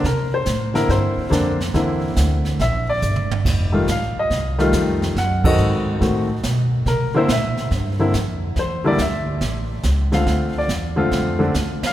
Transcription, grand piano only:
X:1
M:4/4
L:1/8
Q:"Swing" 1/4=141
K:Cmix
V:1 name="Grand piano"
B c2 B c3 z | z4 e d2 z | z2 f _e2 z3 | ^f ^d2 z4 z |
B c e2 z4 | c d e2 z3 ^e- | ^e d z4 z f |]
V:2 name="Grand piano"
z3 [D,B,CE]3 [D,B,CD] z | [D,B,CE]4- [D,B,CE] z3 | z [_E,G,A,F] z3 [E,G,A,F]3 | z [^D,C^FA]3 [D,A,CF] z3 |
z [D,B,CE] z3 [D,B,CE] z2 | z [D,G,B,E] z4 z [D,A,C^E]- | [D,A,C^E]2 z [D,A,CF]2 [D,A,CD] z2 |]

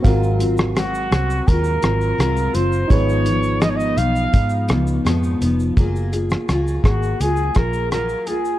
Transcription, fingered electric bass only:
X:1
M:4/4
L:1/8
Q:1/4=84
K:F#
V:1 name="Fingered electric bass" clef=bass
G,,,3 ^B,,, D,, G,,, B,,, F,,, | G,,,3 B,,, G,, C,, E,, E,,, | F,,,2 C,, G,,, C,, A,,,2 z |]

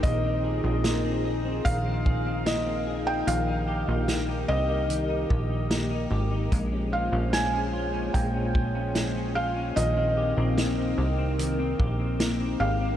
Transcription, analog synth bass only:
X:1
M:4/4
L:1/16
Q:1/4=74
K:Bbdor
V:1 name="Analog synth bass" clef=bass
B,,,3 B,,,4- B,,, B,,,8 | B,,,3 B,,,3 C,,4 B,,,4 A,,,2 | B,,,3 B,,,4- B,,, B,,,8 | B,,,3 B,,,3 C,,4 B,,,4 A,,,2 |]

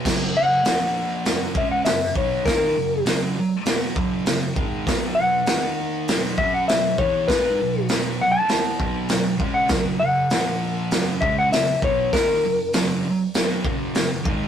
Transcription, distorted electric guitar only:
X:1
M:4/4
L:1/8
Q:1/4=99
K:F#
V:1 name="Distorted electric guitar" clef=bass
[F,,C,F,] [F,,C,] [A,,E,A,]2 [F,,C,F,] [C,G,C] [F,,C,] [B,,F,B,] | [D,A,D] [F,,C,] [F,,C,F,] z [B,,F,B,] [F,,C,F,] [F,,C,] [G,,D,G,] | [B,,F,B,] [B,,F,] [D,A,D]2 [B,,F,B,] [F,CF] [B,,F,] [=E,B,=E] | [G,DG] [B,,F,] [B,,F,B,] z [=E,B,=E] [B,,F,B,] [B,,F,] [C,G,C] |
[F,,C,F,] [F,,C,] [A,,E,A,]2 [F,,C,F,] [C,G,C] [F,,C,] [B,,F,B,] | [D,A,D] [F,,C,] [F,,C,F,] z [B,,F,B,] [F,,C,F,] [F,,C,] [G,,D,G,] |]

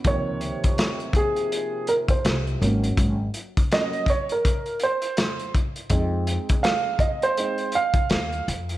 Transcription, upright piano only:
X:1
M:4/4
L:1/16
Q:"Swing 16ths" 1/4=82
K:Db
V:1 name="Upright piano"
d6 A4 B c2 z3 | z4 e2 d B3 c4 z2 | z4 f2 e c3 f4 z2 |]
V:2 name="Upright piano"
[C,E,F,B,]12- [C,E,F,B,]2 [G,B,D]2 | z4 [G,B,D]2 z8 z2 | [A,CE]8 [A,CE]2 z6 |]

